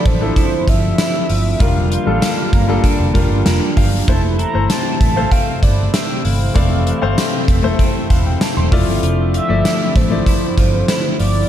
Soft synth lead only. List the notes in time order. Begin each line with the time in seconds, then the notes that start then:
0.07 C5
0.38 C5
0.69 E5
1.61 F5
1.93 F5
4.08 A5
4.39 A#5
4.70 A5
5.32 F5
5.63 D5
5.93 E5
6.24 F5
9.35 E5
9.96 C5
11.19 D5